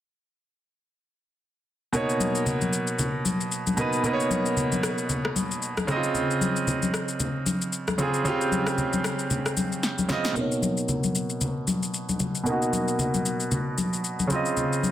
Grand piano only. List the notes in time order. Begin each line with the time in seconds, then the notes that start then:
1.92 B2 A#3 D#4 C#5
3.77 B2 A#3 D#4 B4
4.03 B2 A#3 D#4 B4
4.13 C#5
5.87 C#3 C4 D#4 D#5
5.96 F4
7.98 C#3 C4 F4 G#4
8.24 C#3 C4 F4 G4
10.09 C#3 C4 F4 D#5
10.33 B2 A#3
10.38 D#4 C#5
12.43 B2 A#3
12.48 D#4 F#4
14.27 C#3 C4
14.32 F4 D#5